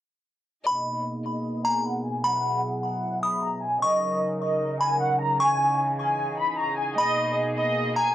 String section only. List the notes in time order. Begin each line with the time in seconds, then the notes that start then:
0.66 B2 A#3 D#4 G#4
2.24 F#3 E4
3.82 C#3 D#4 A#4
5.40 E3 D#4 G#4
6.98 B2 A#3